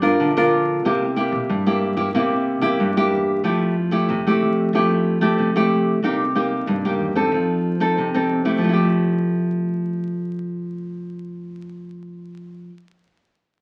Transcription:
Already playing: G3
0.02 G1 D4 F4 A#4
0.20 A#1 D3
0.37 D4 F4 A#4
0.85 C2 C3 A#3 E4 G4
1.16 A#3 E4 G4
1.32 C3
1.49 G2
1.66 A#3 E4 G4
1.97 G2 A#3 E4 G4
2.14 C2 C3 A#3 E4 G4
2.61 C2 A#3 E4 G4
2.79 D2 G2
2.97 A#3 E4 G4
3.10 E2
3.44 F2 F3 A3 E4 G4
3.91 A3 E4 G4
4.09 F2 C3
4.27 A3 E4 G4
4.40 F3
4.73 F2 F3 A3 E4 G4
5.21 A3 E4 G4
5.38 C3 F3
5.56 A3 E4 G4
6.02 C2 C3 A#3 D#4 G4
6.35 A#3 D#4 G4
6.67 C2 G2
6.85 A#3 D#4 G4
6.99 E2
7.15 C4 D#4 A4
7.32 F2 F3
7.80 C4 D#4 A4
7.97 C3 F3
8.14 C4 D#4 A4
8.45 A3 E4 G4
8.58 F1 F3
8.64 A3
8.69 E4
8.73 G4

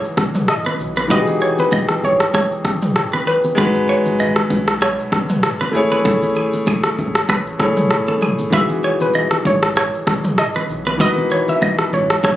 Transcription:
Already playing: E3 D#4 F#4 G#4, impact
0.04 shaker
0.17 E1, kick, cross-stick, high conga, shaker
0.35 mid tom, shaker
0.48 D#5, cross-stick, shaker
0.65 B4, high conga, shaker
0.79 B1, shaker
0.96 B4, high conga, shaker
1.08 E1 E3 D#4 F#4 B4 D#5, kick, low conga, shaker
1.13 G4
1.19 G#4
1.27 high conga, shaker
1.41 C#5, shaker
1.58 B4, high conga, shaker
1.72 D#5, kick, low conga, shaker
1.89 cross-stick, high conga, shaker
2.03 G#1 C#5, high conga, low conga, shaker
2.20 cross-stick, shaker
2.34 E1 C#5, kick, cross-stick, low conga, shaker
2.52 shaker
2.65 kick, cross-stick, high conga, shaker
2.82 mid tom, shaker
2.96 cross-stick, shaker
3.13 B4, high conga, shaker
3.27 B4, shaker
3.44 high conga, shaker
3.55 G#1 G#3 D#4 F#4 B4, kick, low conga, shaker
3.60 B4
3.75 high conga, shaker
3.89 C#5, shaker
4.06 G#1, high conga, shaker
4.19 D#5, low conga, shaker
4.36 cross-stick, high conga, shaker
4.50 B1, kick, high conga, low conga, shaker
4.68 cross-stick, shaker
4.82 C#5, cross-stick, low conga, shaker
4.99 shaker
5.12 F#1, kick, cross-stick, high conga, shaker
5.29 mid tom, shaker
5.43 cross-stick, shaker
5.60 B4, high conga, shaker
5.71 A1 A3 E4 G#4, shaker
5.77 C#5
5.91 B4, high conga, shaker
6.05 A1 A4, kick, low conga, shaker
6.22 high conga, shaker
6.36 G#4, shaker
6.53 high conga, shaker
6.67 G#4, kick, low conga, shaker
6.84 cross-stick, high conga, shaker
6.98 G#1, high conga, low conga, shaker
7.15 cross-stick, shaker
7.29 A1 B4, kick, cross-stick, low conga, shaker
7.47 shaker
7.58 A3 E4 G#4 C#5, kick, cross-stick, high conga, shaker
7.77 mid tom, shaker
7.91 cross-stick, shaker
8.08 A4, high conga, shaker
8.22 G#4, mid tom, shaker
8.39 high conga, shaker
8.50 E1 D#3 E3 F#4 B4 E5, kick, low conga, shaker
8.55 G#4
8.69 high conga, shaker
8.83 C#5, shaker
9.00 E1 B4, high conga, shaker
9.14 D#5, low conga, shaker
9.31 cross-stick, high conga, shaker
9.45 G#1 C#5, kick, high conga, low conga, shaker
9.63 cross-stick, shaker
9.77 C#5, cross-stick, low conga, shaker
9.94 shaker
10.07 E1, kick, cross-stick, high conga, shaker
10.24 mid tom, shaker
10.38 D#5, cross-stick, shaker
10.55 B4, high conga, shaker
10.69 B1, shaker
10.86 B4, high conga, shaker
10.97 E1 E3 D#4 F#4 B4 D#5, kick, low conga, shaker
11.02 A#4
11.09 B4
11.17 high conga, shaker
11.31 C#5, shaker
11.48 E5, high conga, shaker
11.62 D#5, kick, low conga, shaker
11.79 cross-stick, high conga, shaker
11.93 G#1 C#5, high conga, low conga, shaker
12.10 cross-stick, shaker
12.24 E1 C#5, kick, cross-stick, low conga, shaker

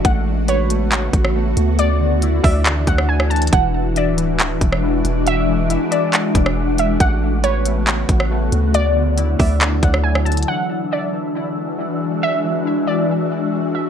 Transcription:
Already playing: F#4
0.05 A1 C#3 A3 B3 C#5 F#5, kick, closed hi-hat
0.48 B4 C#5, closed hi-hat
0.70 A3, closed hi-hat
0.92 F#4, clap, closed hi-hat
1.13 A1, kick, closed hi-hat
1.25 cross-stick
1.35 A3
1.57 D2, closed hi-hat
1.78 E3 D4 E4 D5 E5, closed hi-hat
2.00 D3
2.22 E4, closed hi-hat
2.44 D2 D5 E5, kick, open hi-hat
2.66 D3, clap, closed hi-hat
2.87 D2 F#5, kick, closed hi-hat
2.98 cross-stick
3.09 G#5
3.20 cross-stick
3.30 A5, closed hi-hat
3.36 closed hi-hat
3.42 closed hi-hat
3.47 closed hi-hat
3.52 E1 E3 G#3 D4 F#4 D5 F#5, kick, closed hi-hat
3.96 D5 E5, closed hi-hat
4.07 D1
4.17 E3, closed hi-hat
4.39 E4, clap, closed hi-hat
4.61 E1, kick, closed hi-hat
4.72 cross-stick
4.83 E3
5.05 E1, closed hi-hat
5.26 E5, closed hi-hat
5.49 E3
5.70 E4, closed hi-hat
5.91 D5 E5, closed hi-hat
6.13 E3, clap, closed hi-hat
6.35 E1, kick, closed hi-hat
6.46 cross-stick
6.78 E5, closed hi-hat
7.00 A1 C#3 A3 B3 F#4 C#5 F#5, kick, closed hi-hat
7.44 B4 C#5, closed hi-hat
7.65 A3, closed hi-hat
7.87 F#4, clap, closed hi-hat
8.09 A1, kick, closed hi-hat
8.20 cross-stick
8.31 A3
8.52 D2, closed hi-hat
8.74 D3 F#3 D4 E4 D5 E5, closed hi-hat
8.96 D3
9.18 E4, closed hi-hat
9.39 D2 D5 E5, kick, open hi-hat
9.61 D3, clap, closed hi-hat
9.83 D2 F#5, kick, closed hi-hat
9.94 cross-stick
10.04 G#5
10.15 cross-stick
10.25 A5, closed hi-hat
10.32 closed hi-hat
10.37 closed hi-hat
10.43 closed hi-hat
10.48 E3 G#3 D4 F#4 G#4 E5 F#5
10.91 D5 E5
11.13 E3
11.35 E4
11.78 E3
12.22 E5
12.44 E3
12.66 E4
12.87 D5 E5
13.09 E3
13.75 E5

